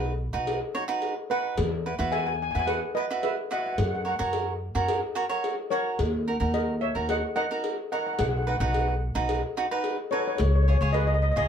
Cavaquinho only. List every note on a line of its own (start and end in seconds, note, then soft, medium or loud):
0.00 0.12 D#4 medium
0.00 0.12 F#4 medium
0.00 0.12 B4 medium
0.33 0.58 D#4 medium
0.33 0.58 F#4 medium
0.33 0.59 B4 medium
0.75 0.83 D#4 medium
0.75 0.83 F#4 medium
0.75 0.83 C#5 loud
0.88 1.13 D#4 medium
0.88 1.13 F#4 medium
0.88 1.14 B4 medium
1.31 1.58 D#4 medium
1.31 1.58 F#4 medium
1.31 1.58 B4 medium
1.86 1.94 E4 medium
1.86 1.94 F#4 soft
1.86 1.94 B4 medium
1.99 2.32 E4 medium
1.99 2.32 F#4 medium
1.99 2.32 B4 medium
2.55 2.79 E4 medium
2.55 2.80 F#4 medium
2.55 2.80 B4 medium
2.97 3.05 E4 medium
2.97 3.04 F#4 medium
2.97 3.05 B4 medium
3.11 3.35 E4 medium
3.11 3.35 F#4 medium
3.11 3.35 B4 medium
3.51 3.78 E4 medium
3.51 3.79 F#4 medium
3.51 3.79 B4 medium
4.05 4.14 F#4 medium
4.05 4.14 A#4 medium
4.05 4.14 C#5 medium
4.19 4.52 F#4 medium
4.19 4.52 A#4 medium
4.19 4.52 C#5 medium
4.75 5.00 F#4 medium
4.75 5.00 A#4 medium
4.75 5.00 C#5 medium
5.15 5.24 F#4 medium
5.15 5.24 A#4 medium
5.15 5.24 C#5 loud
5.29 5.54 F#4 medium
5.29 5.54 A#4 medium
5.29 5.55 C#5 loud
5.71 5.99 F#4 medium
5.71 5.99 A#4 medium
5.71 5.99 C#5 medium
6.28 6.35 D#4 medium
6.28 6.35 F#4 medium
6.28 6.35 A#4 medium
6.40 6.73 D#4 medium
6.40 6.73 F#4 medium
6.40 6.73 A#4 medium
6.95 7.20 D#4 medium
6.95 7.20 F#4 medium
6.95 7.20 A#4 medium
7.36 7.45 D#4 medium
7.36 7.45 F#4 medium
7.36 7.45 A#4 medium
7.51 7.76 D#4 medium
7.51 7.75 F#4 medium
7.51 7.76 A#4 medium
7.92 8.20 D#4 medium
7.92 8.20 F#4 medium
7.92 8.20 A#4 medium
8.47 8.55 D#4 medium
8.47 8.56 F#4 medium
8.47 8.55 B4 medium
8.60 8.94 D#4 medium
8.60 8.94 F#4 medium
8.60 8.94 B4 medium
9.15 9.40 D#4 medium
9.15 9.41 F#4 medium
9.15 9.41 B4 medium
9.57 9.66 D#4 medium
9.57 9.66 F#4 medium
9.57 9.66 B4 medium
9.71 9.96 D#4 medium
9.71 9.96 F#4 medium
9.71 9.96 B4 loud
10.12 10.40 D#4 medium
10.12 10.40 F#4 medium
10.12 10.40 B4 medium
10.68 10.76 F4 medium
10.68 10.76 G#4 medium
10.68 10.76 C#5 medium
10.82 11.15 F4 medium
10.82 11.15 G#4 medium
10.82 11.15 C#5 medium
11.36 11.48 F4 medium
11.36 11.48 G#4 medium
11.36 11.48 C#5 medium